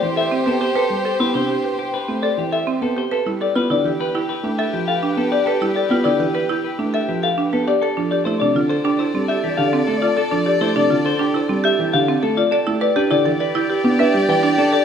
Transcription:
Already playing: violin section G4 C5
0.02 grand piano E3, clean electric guitar G4
0.16 marimba A4, clean electric guitar E5
0.31 marimba C4
0.46 grand piano B3, clean electric guitar A4, marimba B4
0.61 marimba G4, clean electric guitar C5
0.76 clean electric guitar A4, marimba B4
0.90 grand piano G3
1.05 marimba A4, clean electric guitar C5
1.20 grand piano B3, marimba E4, clean electric guitar B4
1.34 grand piano C3, marimba D4, clean electric guitar C5
1.49 marimba G4
1.64 marimba B4
1.79 clean electric guitar G4
1.94 clean electric guitar B4
2.08 grand piano A3, marimba C4
2.22 marimba A4, clean electric guitar D5
2.38 grand piano E3, clean electric guitar G4
2.52 marimba A4, clean electric guitar E5
2.67 marimba C4
2.82 grand piano B3, clean electric guitar A4, marimba B4
2.97 marimba G4, clean electric guitar C5
3.11 violin section G4 B4, clean electric guitar A4, marimba B4
3.26 grand piano G3, marimba E4
3.41 marimba A4, clean electric guitar D5
3.55 grand piano B3, marimba F4, clean electric guitar B4
3.70 grand piano D3, marimba E4, clean electric guitar D5
3.84 grand piano E3, marimba G4
4.00 marimba B4, clean electric guitar B4
4.15 marimba E4, clean electric guitar G4
4.29 clean electric guitar B4
4.43 grand piano A3, marimba D4
4.58 marimba A4, clean electric guitar E5
4.73 grand piano F3, clean electric guitar G4
4.88 marimba A4, clean electric guitar F5
5.03 marimba D4
5.17 grand piano B3, clean electric guitar A4, marimba B4
5.32 marimba G4, clean electric guitar D5
5.46 clean electric guitar A4, marimba B4
5.61 grand piano G3, marimba E4
5.75 marimba A4, clean electric guitar D5
5.90 grand piano B3, marimba F4, clean electric guitar B4
6.04 grand piano D3, marimba E4, clean electric guitar D5
6.19 grand piano E3, marimba G4
6.34 clean electric guitar B4, marimba B4
6.49 marimba E4, clean electric guitar G4
6.64 clean electric guitar B4
6.79 grand piano A3, marimba D4
6.94 marimba A4, clean electric guitar E5
7.08 grand piano F3, clean electric guitar G4
7.23 marimba A4, clean electric guitar F5
7.38 marimba D4
7.53 grand piano B3, clean electric guitar A4, marimba B4
7.68 marimba G4, clean electric guitar D5
7.81 clean electric guitar A4, marimba A4, violin section A4 D5
7.97 grand piano F3, marimba D4
8.11 marimba G4, clean electric guitar D5
8.25 grand piano A3, marimba E4, clean electric guitar C5
8.40 grand piano C3, marimba D4, clean electric guitar D5
8.55 grand piano D3, marimba F4
8.70 marimba A4, clean electric guitar C5
8.84 marimba D4, clean electric guitar G4
8.99 marimba E4, clean electric guitar C5
9.14 grand piano G3, marimba C4
9.28 marimba G4, clean electric guitar E5
9.44 grand piano E3, clean electric guitar G4
9.57 grand piano D3, marimba G4, clean electric guitar F5
9.73 marimba C4
9.87 grand piano A3, clean electric guitar A4, marimba A4
10.02 marimba F4, clean electric guitar D5
10.17 marimba A4, clean electric guitar A4
10.31 grand piano F3, marimba D4
10.46 marimba G4, clean electric guitar D5
10.61 grand piano A3, marimba E4, clean electric guitar C5
10.76 grand piano C3, marimba D4, clean electric guitar D5
10.90 grand piano D3, marimba F4
11.05 marimba A4, clean electric guitar C5
11.19 marimba D4, clean electric guitar G4
11.34 marimba E4, clean electric guitar C5
11.49 grand piano G3, marimba C4
11.64 marimba G4, clean electric guitar E5
11.79 grand piano E3, clean electric guitar G4
11.93 grand piano D3, marimba G4, clean electric guitar F5
12.08 marimba C4
12.23 grand piano A3, marimba A4, clean electric guitar A4
12.37 marimba F4, clean electric guitar D5
12.51 violin section G4 D5, clean electric guitar A4, marimba D5
12.67 grand piano A3, marimba E4
12.81 marimba B4, clean electric guitar D5
12.96 grand piano D4, marimba G4, clean electric guitar B4
13.11 grand piano D3, marimba E4, clean electric guitar D5
13.26 grand piano E3, marimba A4
13.40 clean electric guitar B4, marimba D5
13.55 marimba E4, clean electric guitar G4
13.70 marimba G4, clean electric guitar B4
13.84 grand piano B3, marimba D4
13.99 grand piano D4, marimba B4, clean electric guitar E5
14.14 grand piano G3, marimba G4, clean electric guitar G4
14.29 grand piano E3, marimba B4, clean electric guitar G5
14.43 marimba D4
14.58 grand piano D4, clean electric guitar A4, marimba D5
14.73 marimba A4, clean electric guitar D5

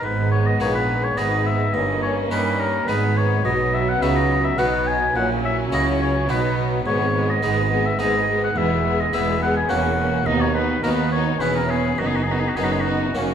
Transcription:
0.02 double bass section G#1, cello section G#2, harpsichord G#2, viola section G#3, violin section B3 D#4, oboe B4
0.31 oboe C#5
0.46 oboe D#5
0.60 double bass section A#1, cello section A#2, harpsichord A#2 B3 D#4 G#4, oboe C#5
0.74 oboe B4
1.03 oboe C#5
1.17 double bass section G#1, cello section G#2, harpsichord G#2 B3 D#4 G#4, viola section G#3, violin section B3 D#4, oboe D#5
1.46 oboe E5
1.74 double bass section G1, harpsichord G2, cello section G2, viola section A#3, violin section C#4 D#4, oboe D#5
2.02 oboe C#5
2.31 double bass section G2, cello section G3, harpsichord G3 C#4 D#4 A#4, oboe B4
2.60 oboe A#4
2.88 double bass section G#1, harpsichord G#2 B3 D#4 G#4, cello section G#2, viola section G#3, violin section B3 D#4, oboe B4
3.17 oboe C#5
3.45 double bass section B1, cello section B2, harpsichord B2, viola section F#3, violin section B3 D#4, oboe D#5
3.74 oboe E5
3.89 oboe F#5
4.02 double bass section C#2, cello section C#3, harpsichord C#3 B3 D#4 F#4, oboe E5
4.16 oboe D#5
4.44 oboe E5
4.58 double bass section B1, harpsichord B2 B3 D#4 F#4, cello section B2, viola section F#3, violin section B3 D#4, oboe F#5
4.87 oboe G#5
5.15 double bass section A#1, cello section A#2, harpsichord A#2, viola section F#3, violin section C#4 E4, oboe F#5
5.45 oboe E5
5.72 double bass section C#2, cello section C#3, harpsichord C#3 C#4 E4 F#4, oboe D#5
6.01 oboe C#5
6.29 double bass section B1, harpsichord B2 B3 D#4 F#4, cello section B2, viola section F#3, violin section B3 D#4, oboe B4
6.86 double bass section G#1, harpsichord G#2, cello section G#2, viola section G#3, violin section B3 G#4, oboe C#5
7.14 viola section G#3, violin section B3 G#4
7.30 oboe D#5
7.43 double bass section G#1, harpsichord G#2 B3 D#4 G#4, cello section G#2, viola section G#3, violin section B3 G#4
7.70 viola section G#3, violin section B3 G#4
7.86 oboe E5
7.99 double bass section G#1, harpsichord G#2 B3 D#4 G#4, cello section G#2, viola section G#3, violin section B3 G#4, oboe D#5
8.28 viola section G#3, violin section B3 G#4
8.44 oboe F#5
8.56 double bass section E1, harpsichord E2, cello section E2, viola section G#3, violin section B3 G#4, oboe E5
8.84 viola section G#3, violin section B3 G#4
9.00 oboe D#5
9.13 double bass section E1, cello section E2, harpsichord E2 B3 E4 G#4, viola section G#3, violin section B3 G#4, oboe E5
9.40 viola section G#3, violin section B3 G#4, oboe F#5
9.56 oboe G#5
9.68 double bass section E1, harpsichord E2 A#3 C#4 F#4, cello section E2, viola section A#3, violin section C#4 F#4, oboe F#5
9.97 viola section A#3, violin section C#4 F#4
10.26 harpsichord D#2, cello section D#2, double bass section D#2, viola section B3, violin section D#4 F#4, oboe D#5
10.40 oboe C#5
10.54 viola section B3, violin section D#4 F#4, oboe B4
10.83 cello section D#2, double bass section D#2, harpsichord D#2 B3 D#4 F#4, viola section B3, violin section D#4 F#4, oboe A#4
10.97 oboe B4
11.12 viola section B3, violin section D#4 F#4, oboe C#5
11.40 double bass section E1, harpsichord E2 B3 C#4 E4, cello section E2, viola section B3, violin section C#4 E4, oboe B4
11.55 oboe A#4
11.69 viola section B3, violin section C#4 E4, oboe G#4
11.98 double bass section F#1, harpsichord F#2, cello section F#2, viola section B3, violin section D#4, oboe F#4
12.07 oboe G#4
12.16 oboe F#4
12.23 oboe G#4
12.28 viola section B3, violin section D#4, oboe F#4
12.40 oboe G#4
12.49 oboe F#4
12.56 double bass section F#1, cello section F#2, harpsichord F#2 B3 D#4, viola section B3, violin section C#4 D#4, oboe G#4
12.64 oboe F#4
12.72 oboe G#4
12.81 oboe F#4
12.85 viola section B3, violin section D#4
13.02 violin section E4
13.14 double bass section F#1, harpsichord F#2 A#3 C#4 F#4, cello section F#2, viola section A#3, violin section C#4 D#4
13.31 violin section C#4

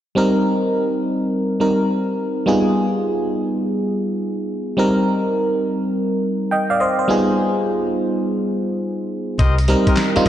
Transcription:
0.15 fm electric piano G3 C4 D#4 A#4
1.60 fm electric piano G3 C4 D#4 A#4
2.46 fm electric piano G3 B3 D#4 F4 G#4
4.77 fm electric piano G3 C4 D#4 A#4
6.51 fm electric piano D#5 G5
6.70 fm electric piano D5 F5
6.80 fm electric piano C5 D#5
6.99 fm electric piano C5
7.08 fm electric piano G3 B3 D#4 F4 G#4
9.39 fingered electric bass C2, horn section G4 A#4 C5 D#5, kick, closed hi-hat
9.58 closed hi-hat
9.68 fm electric piano G3 C4 D#4 A#4, closed hi-hat
9.87 horn section G4 A#4 C5 D#5, kick, closed hi-hat
9.97 snare, clap, closed hi-hat
10.16 fm electric piano G3 C4 D#4 F4, muted fingered electric bass stroke, closed hi-hat

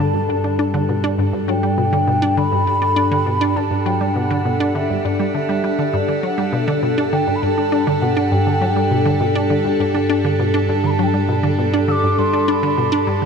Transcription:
Already playing: synth drone G2, ambient pad D4 G4 A4, flute A5
0.14 synth arpeggio sound G2
0.29 synth arpeggio sound G2
0.44 synth arpeggio sound D4
0.59 synth arpeggio sound D4
0.74 synth arpeggio sound D3
0.89 synth arpeggio sound B2
1.04 synth arpeggio sound D4
1.18 synth arpeggio sound G2
1.33 synth arpeggio sound G2
1.48 synth arpeggio sound F#3, flute G5
1.63 synth arpeggio sound G3
1.78 synth arpeggio sound B2
1.93 synth arpeggio sound D3
2.07 synth arpeggio sound B2
2.22 synth arpeggio sound D4
2.37 synth arpeggio sound D3, flute B5
2.52 synth arpeggio sound G2
2.67 synth arpeggio sound G2
2.82 synth arpeggio sound D4
2.96 synth arpeggio sound D4
3.11 synth arpeggio sound D3
3.26 synth arpeggio sound B2
3.41 synth arpeggio sound D4
3.56 synth arpeggio sound G2, flute A5
3.71 synth arpeggio sound G2
3.86 synth arpeggio sound F#3, flute G5
4.01 synth arpeggio sound G3
4.16 synth arpeggio sound B2, flute F#5
4.31 synth arpeggio sound D3
4.45 synth arpeggio sound B2
4.60 synth arpeggio sound D4
4.75 synth arpeggio sound D3, flute E5
4.90 synth arpeggio sound G2
5.05 synth arpeggio sound G2, flute D5
5.20 synth arpeggio sound G3
5.34 synth arpeggio sound D3, flute E5
5.49 synth arpeggio sound G3
5.64 synth arpeggio sound G3
5.79 synth arpeggio sound D3
5.94 synth arpeggio sound G2, synth drone G2, flute E5
5.98 flute D5
6.08 synth arpeggio sound D3
6.23 synth arpeggio sound F#3, flute F#5
6.38 synth arpeggio sound G3
6.53 synth arpeggio sound B2
6.68 synth arpeggio sound D3
6.83 synth arpeggio sound B2
6.98 synth arpeggio sound D4
7.12 synth arpeggio sound D3, flute G5
7.28 synth arpeggio sound G2
7.35 flute B5
7.42 synth arpeggio sound G2, flute A5
7.58 synth arpeggio sound D4
7.72 synth arpeggio sound D4
7.87 synth arpeggio sound D3
8.02 synth arpeggio sound B2, flute F#5
8.17 synth arpeggio sound D4
8.31 synth arpeggio sound G2, flute G5
8.47 synth arpeggio sound D3, flute A5
8.53 flute G5
8.61 synth arpeggio sound F#3, flute F#5
8.70 flute G5
8.76 synth arpeggio sound G3
8.91 synth arpeggio sound B2
9.05 synth arpeggio sound D3
9.20 synth arpeggio sound B2
9.35 synth arpeggio sound D4
9.50 synth arpeggio sound D3
9.65 synth arpeggio sound G2
9.80 synth arpeggio sound G2
9.95 synth arpeggio sound D4
10.10 synth arpeggio sound D4
10.25 synth arpeggio sound D3
10.39 synth arpeggio sound B2
10.54 synth arpeggio sound D4
10.69 synth arpeggio sound G2, flute A5
10.84 synth arpeggio sound D3, flute B5
10.90 flute A5
10.99 synth arpeggio sound F#3
11.03 flute G5
11.07 flute A5
11.14 synth arpeggio sound G3
11.29 synth arpeggio sound B2
11.43 synth arpeggio sound D3
11.59 synth arpeggio sound B2
11.74 synth arpeggio sound D4
11.88 synth arpeggio sound D3, flute D6 E6
12.03 synth arpeggio sound G2
12.18 synth arpeggio sound G2, flute C6
12.33 synth arpeggio sound D4
12.48 synth arpeggio sound D4, flute B5
12.63 synth arpeggio sound D3
12.78 synth arpeggio sound B2
12.92 synth arpeggio sound D4
13.07 synth arpeggio sound G2, flute A5
13.22 synth arpeggio sound D3

